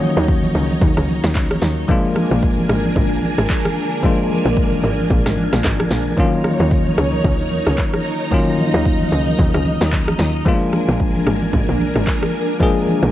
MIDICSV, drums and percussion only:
0, 0, Header, 1, 2, 480
1, 0, Start_track
1, 0, Key_signature, -6, "minor"
1, 0, Tempo, 535714
1, 1692, Time_signature, 4, 2, 24, 8
1, 11752, End_track
2, 0, Start_track
2, 0, Title_t, "Drums"
2, 12, Note_on_c, 9, 63, 75
2, 12, Note_on_c, 9, 82, 89
2, 101, Note_off_c, 9, 63, 0
2, 101, Note_off_c, 9, 82, 0
2, 151, Note_on_c, 9, 82, 58
2, 241, Note_off_c, 9, 82, 0
2, 253, Note_on_c, 9, 82, 78
2, 254, Note_on_c, 9, 36, 102
2, 343, Note_off_c, 9, 82, 0
2, 344, Note_off_c, 9, 36, 0
2, 391, Note_on_c, 9, 63, 81
2, 392, Note_on_c, 9, 82, 57
2, 481, Note_off_c, 9, 63, 0
2, 481, Note_off_c, 9, 82, 0
2, 494, Note_on_c, 9, 82, 96
2, 584, Note_off_c, 9, 82, 0
2, 630, Note_on_c, 9, 63, 82
2, 633, Note_on_c, 9, 82, 60
2, 719, Note_off_c, 9, 63, 0
2, 723, Note_off_c, 9, 82, 0
2, 731, Note_on_c, 9, 36, 116
2, 731, Note_on_c, 9, 64, 81
2, 732, Note_on_c, 9, 82, 84
2, 821, Note_off_c, 9, 36, 0
2, 821, Note_off_c, 9, 64, 0
2, 822, Note_off_c, 9, 82, 0
2, 871, Note_on_c, 9, 37, 94
2, 872, Note_on_c, 9, 82, 59
2, 961, Note_off_c, 9, 37, 0
2, 961, Note_off_c, 9, 82, 0
2, 970, Note_on_c, 9, 63, 80
2, 973, Note_on_c, 9, 82, 98
2, 1060, Note_off_c, 9, 63, 0
2, 1063, Note_off_c, 9, 82, 0
2, 1111, Note_on_c, 9, 38, 68
2, 1111, Note_on_c, 9, 82, 65
2, 1200, Note_off_c, 9, 38, 0
2, 1201, Note_off_c, 9, 82, 0
2, 1211, Note_on_c, 9, 82, 72
2, 1214, Note_on_c, 9, 36, 94
2, 1216, Note_on_c, 9, 39, 93
2, 1300, Note_off_c, 9, 82, 0
2, 1304, Note_off_c, 9, 36, 0
2, 1305, Note_off_c, 9, 39, 0
2, 1351, Note_on_c, 9, 82, 57
2, 1352, Note_on_c, 9, 63, 76
2, 1353, Note_on_c, 9, 37, 100
2, 1441, Note_off_c, 9, 63, 0
2, 1441, Note_off_c, 9, 82, 0
2, 1443, Note_off_c, 9, 37, 0
2, 1451, Note_on_c, 9, 38, 68
2, 1453, Note_on_c, 9, 82, 96
2, 1540, Note_off_c, 9, 38, 0
2, 1542, Note_off_c, 9, 82, 0
2, 1592, Note_on_c, 9, 82, 54
2, 1682, Note_off_c, 9, 82, 0
2, 1690, Note_on_c, 9, 64, 72
2, 1692, Note_on_c, 9, 36, 116
2, 1692, Note_on_c, 9, 82, 75
2, 1779, Note_off_c, 9, 64, 0
2, 1782, Note_off_c, 9, 36, 0
2, 1782, Note_off_c, 9, 82, 0
2, 1833, Note_on_c, 9, 82, 59
2, 1922, Note_off_c, 9, 82, 0
2, 1931, Note_on_c, 9, 63, 76
2, 1932, Note_on_c, 9, 82, 95
2, 1933, Note_on_c, 9, 37, 82
2, 2021, Note_off_c, 9, 63, 0
2, 2021, Note_off_c, 9, 82, 0
2, 2023, Note_off_c, 9, 37, 0
2, 2072, Note_on_c, 9, 82, 58
2, 2161, Note_off_c, 9, 82, 0
2, 2173, Note_on_c, 9, 82, 82
2, 2174, Note_on_c, 9, 36, 98
2, 2263, Note_off_c, 9, 36, 0
2, 2263, Note_off_c, 9, 82, 0
2, 2312, Note_on_c, 9, 63, 81
2, 2312, Note_on_c, 9, 82, 57
2, 2401, Note_off_c, 9, 63, 0
2, 2401, Note_off_c, 9, 82, 0
2, 2413, Note_on_c, 9, 37, 98
2, 2414, Note_on_c, 9, 82, 92
2, 2503, Note_off_c, 9, 37, 0
2, 2503, Note_off_c, 9, 82, 0
2, 2550, Note_on_c, 9, 63, 81
2, 2553, Note_on_c, 9, 82, 60
2, 2640, Note_off_c, 9, 63, 0
2, 2643, Note_off_c, 9, 82, 0
2, 2651, Note_on_c, 9, 36, 117
2, 2652, Note_on_c, 9, 64, 78
2, 2653, Note_on_c, 9, 82, 84
2, 2741, Note_off_c, 9, 36, 0
2, 2741, Note_off_c, 9, 64, 0
2, 2742, Note_off_c, 9, 82, 0
2, 2791, Note_on_c, 9, 82, 56
2, 2881, Note_off_c, 9, 82, 0
2, 2890, Note_on_c, 9, 63, 77
2, 2894, Note_on_c, 9, 82, 96
2, 2980, Note_off_c, 9, 63, 0
2, 2983, Note_off_c, 9, 82, 0
2, 3031, Note_on_c, 9, 37, 95
2, 3032, Note_on_c, 9, 82, 67
2, 3121, Note_off_c, 9, 37, 0
2, 3122, Note_off_c, 9, 82, 0
2, 3131, Note_on_c, 9, 82, 71
2, 3134, Note_on_c, 9, 36, 87
2, 3136, Note_on_c, 9, 39, 91
2, 3221, Note_off_c, 9, 82, 0
2, 3224, Note_off_c, 9, 36, 0
2, 3226, Note_off_c, 9, 39, 0
2, 3271, Note_on_c, 9, 82, 57
2, 3272, Note_on_c, 9, 63, 81
2, 3273, Note_on_c, 9, 37, 101
2, 3361, Note_off_c, 9, 82, 0
2, 3362, Note_off_c, 9, 63, 0
2, 3363, Note_off_c, 9, 37, 0
2, 3373, Note_on_c, 9, 82, 94
2, 3462, Note_off_c, 9, 82, 0
2, 3513, Note_on_c, 9, 82, 56
2, 3602, Note_off_c, 9, 82, 0
2, 3610, Note_on_c, 9, 64, 70
2, 3612, Note_on_c, 9, 36, 108
2, 3612, Note_on_c, 9, 82, 75
2, 3699, Note_off_c, 9, 64, 0
2, 3702, Note_off_c, 9, 36, 0
2, 3702, Note_off_c, 9, 82, 0
2, 3753, Note_on_c, 9, 82, 58
2, 3843, Note_off_c, 9, 82, 0
2, 3851, Note_on_c, 9, 63, 75
2, 3851, Note_on_c, 9, 82, 93
2, 3941, Note_off_c, 9, 63, 0
2, 3941, Note_off_c, 9, 82, 0
2, 3991, Note_on_c, 9, 82, 60
2, 4081, Note_off_c, 9, 82, 0
2, 4093, Note_on_c, 9, 82, 78
2, 4094, Note_on_c, 9, 36, 100
2, 4182, Note_off_c, 9, 82, 0
2, 4183, Note_off_c, 9, 36, 0
2, 4231, Note_on_c, 9, 63, 76
2, 4231, Note_on_c, 9, 82, 53
2, 4321, Note_off_c, 9, 63, 0
2, 4321, Note_off_c, 9, 82, 0
2, 4333, Note_on_c, 9, 82, 93
2, 4423, Note_off_c, 9, 82, 0
2, 4470, Note_on_c, 9, 63, 80
2, 4472, Note_on_c, 9, 82, 60
2, 4559, Note_off_c, 9, 63, 0
2, 4562, Note_off_c, 9, 82, 0
2, 4571, Note_on_c, 9, 36, 114
2, 4571, Note_on_c, 9, 64, 82
2, 4571, Note_on_c, 9, 82, 84
2, 4660, Note_off_c, 9, 36, 0
2, 4660, Note_off_c, 9, 64, 0
2, 4661, Note_off_c, 9, 82, 0
2, 4710, Note_on_c, 9, 37, 91
2, 4710, Note_on_c, 9, 38, 66
2, 4711, Note_on_c, 9, 82, 58
2, 4800, Note_off_c, 9, 37, 0
2, 4800, Note_off_c, 9, 38, 0
2, 4801, Note_off_c, 9, 82, 0
2, 4810, Note_on_c, 9, 63, 76
2, 4813, Note_on_c, 9, 82, 97
2, 4899, Note_off_c, 9, 63, 0
2, 4902, Note_off_c, 9, 82, 0
2, 4950, Note_on_c, 9, 37, 91
2, 4950, Note_on_c, 9, 38, 66
2, 4951, Note_on_c, 9, 82, 65
2, 5040, Note_off_c, 9, 37, 0
2, 5040, Note_off_c, 9, 38, 0
2, 5041, Note_off_c, 9, 82, 0
2, 5050, Note_on_c, 9, 82, 74
2, 5054, Note_on_c, 9, 36, 91
2, 5055, Note_on_c, 9, 39, 90
2, 5140, Note_off_c, 9, 82, 0
2, 5143, Note_off_c, 9, 36, 0
2, 5145, Note_off_c, 9, 39, 0
2, 5191, Note_on_c, 9, 63, 78
2, 5191, Note_on_c, 9, 82, 52
2, 5193, Note_on_c, 9, 37, 104
2, 5280, Note_off_c, 9, 82, 0
2, 5281, Note_off_c, 9, 63, 0
2, 5282, Note_off_c, 9, 37, 0
2, 5290, Note_on_c, 9, 38, 69
2, 5292, Note_on_c, 9, 46, 76
2, 5292, Note_on_c, 9, 82, 90
2, 5380, Note_off_c, 9, 38, 0
2, 5382, Note_off_c, 9, 46, 0
2, 5382, Note_off_c, 9, 82, 0
2, 5432, Note_on_c, 9, 63, 56
2, 5432, Note_on_c, 9, 82, 55
2, 5521, Note_off_c, 9, 63, 0
2, 5521, Note_off_c, 9, 82, 0
2, 5530, Note_on_c, 9, 64, 68
2, 5531, Note_on_c, 9, 82, 73
2, 5532, Note_on_c, 9, 36, 111
2, 5620, Note_off_c, 9, 64, 0
2, 5621, Note_off_c, 9, 36, 0
2, 5621, Note_off_c, 9, 82, 0
2, 5672, Note_on_c, 9, 82, 57
2, 5762, Note_off_c, 9, 82, 0
2, 5770, Note_on_c, 9, 82, 92
2, 5772, Note_on_c, 9, 37, 89
2, 5772, Note_on_c, 9, 63, 71
2, 5860, Note_off_c, 9, 82, 0
2, 5861, Note_off_c, 9, 37, 0
2, 5862, Note_off_c, 9, 63, 0
2, 5910, Note_on_c, 9, 82, 59
2, 6000, Note_off_c, 9, 82, 0
2, 6013, Note_on_c, 9, 36, 99
2, 6013, Note_on_c, 9, 82, 80
2, 6102, Note_off_c, 9, 82, 0
2, 6103, Note_off_c, 9, 36, 0
2, 6151, Note_on_c, 9, 82, 58
2, 6152, Note_on_c, 9, 63, 74
2, 6240, Note_off_c, 9, 82, 0
2, 6241, Note_off_c, 9, 63, 0
2, 6253, Note_on_c, 9, 37, 96
2, 6253, Note_on_c, 9, 82, 94
2, 6342, Note_off_c, 9, 37, 0
2, 6343, Note_off_c, 9, 82, 0
2, 6390, Note_on_c, 9, 63, 82
2, 6392, Note_on_c, 9, 82, 59
2, 6480, Note_off_c, 9, 63, 0
2, 6482, Note_off_c, 9, 82, 0
2, 6491, Note_on_c, 9, 36, 111
2, 6491, Note_on_c, 9, 64, 84
2, 6491, Note_on_c, 9, 82, 83
2, 6580, Note_off_c, 9, 36, 0
2, 6581, Note_off_c, 9, 64, 0
2, 6581, Note_off_c, 9, 82, 0
2, 6630, Note_on_c, 9, 82, 59
2, 6720, Note_off_c, 9, 82, 0
2, 6731, Note_on_c, 9, 63, 78
2, 6733, Note_on_c, 9, 82, 93
2, 6820, Note_off_c, 9, 63, 0
2, 6822, Note_off_c, 9, 82, 0
2, 6870, Note_on_c, 9, 37, 92
2, 6870, Note_on_c, 9, 82, 66
2, 6959, Note_off_c, 9, 37, 0
2, 6960, Note_off_c, 9, 82, 0
2, 6970, Note_on_c, 9, 82, 74
2, 6974, Note_on_c, 9, 36, 94
2, 6975, Note_on_c, 9, 39, 92
2, 7059, Note_off_c, 9, 82, 0
2, 7063, Note_off_c, 9, 36, 0
2, 7064, Note_off_c, 9, 39, 0
2, 7110, Note_on_c, 9, 82, 54
2, 7112, Note_on_c, 9, 37, 100
2, 7112, Note_on_c, 9, 63, 79
2, 7199, Note_off_c, 9, 82, 0
2, 7201, Note_off_c, 9, 37, 0
2, 7201, Note_off_c, 9, 63, 0
2, 7211, Note_on_c, 9, 82, 95
2, 7301, Note_off_c, 9, 82, 0
2, 7352, Note_on_c, 9, 82, 57
2, 7441, Note_off_c, 9, 82, 0
2, 7450, Note_on_c, 9, 64, 73
2, 7452, Note_on_c, 9, 36, 116
2, 7452, Note_on_c, 9, 82, 69
2, 7540, Note_off_c, 9, 64, 0
2, 7541, Note_off_c, 9, 82, 0
2, 7542, Note_off_c, 9, 36, 0
2, 7592, Note_on_c, 9, 82, 57
2, 7682, Note_off_c, 9, 82, 0
2, 7690, Note_on_c, 9, 82, 94
2, 7692, Note_on_c, 9, 63, 76
2, 7780, Note_off_c, 9, 82, 0
2, 7781, Note_off_c, 9, 63, 0
2, 7830, Note_on_c, 9, 82, 58
2, 7920, Note_off_c, 9, 82, 0
2, 7932, Note_on_c, 9, 82, 83
2, 7933, Note_on_c, 9, 36, 99
2, 8022, Note_off_c, 9, 82, 0
2, 8023, Note_off_c, 9, 36, 0
2, 8071, Note_on_c, 9, 63, 76
2, 8071, Note_on_c, 9, 82, 56
2, 8161, Note_off_c, 9, 63, 0
2, 8161, Note_off_c, 9, 82, 0
2, 8173, Note_on_c, 9, 82, 100
2, 8263, Note_off_c, 9, 82, 0
2, 8310, Note_on_c, 9, 63, 85
2, 8313, Note_on_c, 9, 82, 60
2, 8400, Note_off_c, 9, 63, 0
2, 8402, Note_off_c, 9, 82, 0
2, 8411, Note_on_c, 9, 36, 112
2, 8412, Note_on_c, 9, 64, 83
2, 8412, Note_on_c, 9, 82, 83
2, 8501, Note_off_c, 9, 36, 0
2, 8502, Note_off_c, 9, 64, 0
2, 8502, Note_off_c, 9, 82, 0
2, 8550, Note_on_c, 9, 37, 96
2, 8551, Note_on_c, 9, 82, 58
2, 8640, Note_off_c, 9, 37, 0
2, 8641, Note_off_c, 9, 82, 0
2, 8651, Note_on_c, 9, 63, 81
2, 8653, Note_on_c, 9, 82, 99
2, 8741, Note_off_c, 9, 63, 0
2, 8743, Note_off_c, 9, 82, 0
2, 8790, Note_on_c, 9, 38, 67
2, 8791, Note_on_c, 9, 82, 67
2, 8880, Note_off_c, 9, 38, 0
2, 8881, Note_off_c, 9, 82, 0
2, 8890, Note_on_c, 9, 82, 72
2, 8894, Note_on_c, 9, 36, 91
2, 8895, Note_on_c, 9, 39, 90
2, 8979, Note_off_c, 9, 82, 0
2, 8984, Note_off_c, 9, 36, 0
2, 8984, Note_off_c, 9, 39, 0
2, 9030, Note_on_c, 9, 82, 58
2, 9032, Note_on_c, 9, 37, 103
2, 9033, Note_on_c, 9, 63, 80
2, 9120, Note_off_c, 9, 82, 0
2, 9122, Note_off_c, 9, 37, 0
2, 9122, Note_off_c, 9, 63, 0
2, 9131, Note_on_c, 9, 38, 66
2, 9132, Note_on_c, 9, 82, 94
2, 9220, Note_off_c, 9, 38, 0
2, 9222, Note_off_c, 9, 82, 0
2, 9272, Note_on_c, 9, 82, 57
2, 9362, Note_off_c, 9, 82, 0
2, 9371, Note_on_c, 9, 64, 70
2, 9372, Note_on_c, 9, 36, 116
2, 9372, Note_on_c, 9, 82, 70
2, 9460, Note_off_c, 9, 64, 0
2, 9462, Note_off_c, 9, 36, 0
2, 9462, Note_off_c, 9, 82, 0
2, 9512, Note_on_c, 9, 82, 59
2, 9602, Note_off_c, 9, 82, 0
2, 9611, Note_on_c, 9, 82, 94
2, 9612, Note_on_c, 9, 37, 84
2, 9612, Note_on_c, 9, 63, 73
2, 9701, Note_off_c, 9, 63, 0
2, 9701, Note_off_c, 9, 82, 0
2, 9702, Note_off_c, 9, 37, 0
2, 9750, Note_on_c, 9, 82, 59
2, 9840, Note_off_c, 9, 82, 0
2, 9852, Note_on_c, 9, 82, 80
2, 9853, Note_on_c, 9, 36, 101
2, 9942, Note_off_c, 9, 82, 0
2, 9943, Note_off_c, 9, 36, 0
2, 9991, Note_on_c, 9, 63, 78
2, 9991, Note_on_c, 9, 82, 54
2, 10081, Note_off_c, 9, 63, 0
2, 10081, Note_off_c, 9, 82, 0
2, 10093, Note_on_c, 9, 37, 97
2, 10094, Note_on_c, 9, 82, 94
2, 10183, Note_off_c, 9, 37, 0
2, 10183, Note_off_c, 9, 82, 0
2, 10230, Note_on_c, 9, 63, 82
2, 10233, Note_on_c, 9, 82, 62
2, 10320, Note_off_c, 9, 63, 0
2, 10323, Note_off_c, 9, 82, 0
2, 10331, Note_on_c, 9, 36, 114
2, 10332, Note_on_c, 9, 64, 85
2, 10333, Note_on_c, 9, 82, 83
2, 10421, Note_off_c, 9, 36, 0
2, 10421, Note_off_c, 9, 64, 0
2, 10422, Note_off_c, 9, 82, 0
2, 10472, Note_on_c, 9, 82, 55
2, 10561, Note_off_c, 9, 82, 0
2, 10571, Note_on_c, 9, 63, 84
2, 10574, Note_on_c, 9, 82, 92
2, 10660, Note_off_c, 9, 63, 0
2, 10663, Note_off_c, 9, 82, 0
2, 10711, Note_on_c, 9, 37, 94
2, 10712, Note_on_c, 9, 82, 65
2, 10801, Note_off_c, 9, 37, 0
2, 10802, Note_off_c, 9, 82, 0
2, 10811, Note_on_c, 9, 82, 71
2, 10815, Note_on_c, 9, 36, 92
2, 10816, Note_on_c, 9, 39, 93
2, 10901, Note_off_c, 9, 82, 0
2, 10904, Note_off_c, 9, 36, 0
2, 10906, Note_off_c, 9, 39, 0
2, 10951, Note_on_c, 9, 82, 56
2, 10953, Note_on_c, 9, 37, 101
2, 10953, Note_on_c, 9, 63, 74
2, 11041, Note_off_c, 9, 82, 0
2, 11043, Note_off_c, 9, 37, 0
2, 11043, Note_off_c, 9, 63, 0
2, 11054, Note_on_c, 9, 82, 89
2, 11143, Note_off_c, 9, 82, 0
2, 11193, Note_on_c, 9, 82, 57
2, 11283, Note_off_c, 9, 82, 0
2, 11291, Note_on_c, 9, 64, 73
2, 11293, Note_on_c, 9, 36, 112
2, 11293, Note_on_c, 9, 82, 70
2, 11380, Note_off_c, 9, 64, 0
2, 11382, Note_off_c, 9, 36, 0
2, 11382, Note_off_c, 9, 82, 0
2, 11434, Note_on_c, 9, 82, 59
2, 11523, Note_off_c, 9, 82, 0
2, 11531, Note_on_c, 9, 63, 73
2, 11532, Note_on_c, 9, 82, 94
2, 11621, Note_off_c, 9, 63, 0
2, 11621, Note_off_c, 9, 82, 0
2, 11671, Note_on_c, 9, 82, 59
2, 11752, Note_off_c, 9, 82, 0
2, 11752, End_track
0, 0, End_of_file